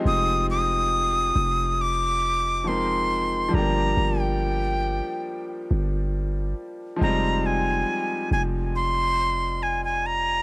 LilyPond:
<<
  \new Staff \with { instrumentName = "Flute" } { \time 4/4 \key f \dorian \tempo 4 = 69 ees'''8 ees'''4. d'''4 c'''4 | bes''8. g''4. r4. r16 | bes''8 aes''4 aes''8 c'''4 aes''16 aes''16 bes''8 | }
  \new Staff \with { instrumentName = "Grand piano" } { \time 4/4 \key f \dorian <f aes c' ees' g'>2. <f aes c' ees' bes'>4 | <f g a bes d' g'>1 | <f g aes c' ees'>1 | }
  \new Staff \with { instrumentName = "808-style bass" } { \clef bass \time 4/4 \key f \dorian f,,4. f,,2~ f,,8 | g,,8 g,,4~ g,,16 r8. g,,4 r8 | f,,4 r8 f,,2~ f,,8 | }
>>